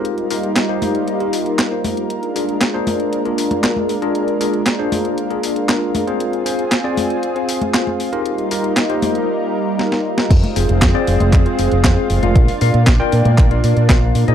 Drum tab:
CC |----------------|----------------|----------------|----------------|
HH |xxoxx-oxxxoxx-ox|xxoxx-oxxxoxx-ox|xxoxx-oxxxoxx-ox|xxoxx-oxxxoxx-ox|
CP |----x-------x---|----x-------x---|----x-------x---|----x-------x---|
SD |----o-------o---|----o-------o---|----o-------o---|----o-------o---|
CG |------o-------o-|------o----o-o--|------o-------o-|------o----o-o--|
BD |----------------|----------------|----------------|----------------|

CC |----------------|x---------------|----------------|
HH |xxoxxxox--------|xxoxx-oxxxoxx-ox|xooxx-oxxxoxx-ox|
CP |----x-----------|----x---x---x---|----x---x---x---|
SD |----o-------oo-o|----o-------o---|----o-------o---|
CG |------o---------|-o-----o-------o|-------o--------|
BD |----------------|o---o---o---o---|o---o---o---o---|